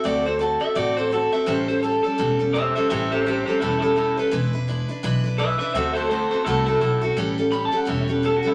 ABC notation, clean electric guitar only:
X:1
M:4/4
L:1/8
Q:"Swing" 1/4=168
K:D
V:1 name="Clean electric guitar"
d =c A e d c A e | =c c A A2 z [ce] [ce] | [=ce] [Gc] [Gc] [Gc] [EA] [EA] [EA] B | z6 [Be] [Be] |
[=ce] [Ac] [Ac] [Ac] [EA] [EA] [EA] F | z2 (3b a f (3e c B (3A F E |]